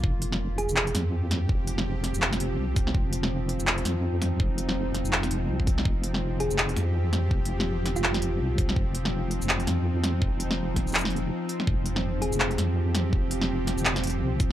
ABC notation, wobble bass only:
X:1
M:4/4
L:1/16
Q:"Swing 16ths" 1/4=165
K:Cphr
V:1 name="Wobble bass" clef=bass
F,,,6- F,,, F,,,3 F,,6 | F,,,6- F,,, F,,,4- F,,, C,,4 | F,,,6- F,,, F,,,3 F,,6 | F,,,6- F,,, F,,,4- F,,, C,,4 |
F,,,6- F,,, F,,,3 F,,6 | F,,,6- F,,, F,,,4- F,,, C,,4 | F,,,6- F,,, F,,,3 F,,6 | F,,,6- F,,, F,,,4- F,,, z4 |
F,,,6- F,,, F,,,3 F,,6 | F,,,6- F,,, F,,,4- F,,, C,,4 |]